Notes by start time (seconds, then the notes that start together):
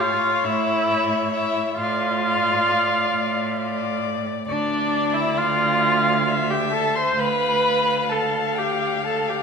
Already playing: A2 C#5
0.00 F4 F5
0.43 A2 E4 E5
0.89 C#5
1.32 E4 E5
1.77 A2 F4 D5 F5
2.25 D5
3.14 A2
3.60 D5
4.46 D2 D4 D5
5.14 E4 E5
5.37 F4 F5
6.28 E5
6.49 G4 G5
6.72 A4 A5
6.95 C5 C6
7.17 D2 B4 F5 B5
8.09 A4 A5
8.55 G4 G5
9.04 A4 A5
9.27 G4 G5